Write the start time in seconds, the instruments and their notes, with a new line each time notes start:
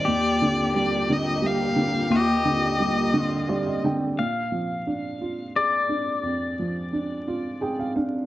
Already playing: violin D5
0.05 upright piano D#2, string section A#2 A#3 G4, pedal steel guitar G4
0.42 upright piano D3
0.75 upright piano G3, violin D5
1.10 upright piano D3, violin D#5
1.42 upright piano G3
1.46 violin F5
1.76 upright piano D3
2.10 upright piano D#2, pedal steel guitar G4
2.16 violin D#5
2.45 upright piano D3
2.80 upright piano G3
3.14 upright piano D3
3.23 pedal steel guitar F4
3.49 upright piano G3 D5
3.66 upright piano D#5
3.84 upright piano D3 G5
4.19 upright piano A#2, pedal steel guitar F5
4.52 upright piano F3
4.87 upright piano D4
5.21 upright piano F4
5.56 upright piano G#4, pedal steel guitar D5
5.89 upright piano D4
6.23 upright piano F2
6.59 upright piano F3
6.93 upright piano D4
7.28 upright piano F4
7.61 upright piano G#4 G5
7.79 upright piano F5
7.96 upright piano D4 F5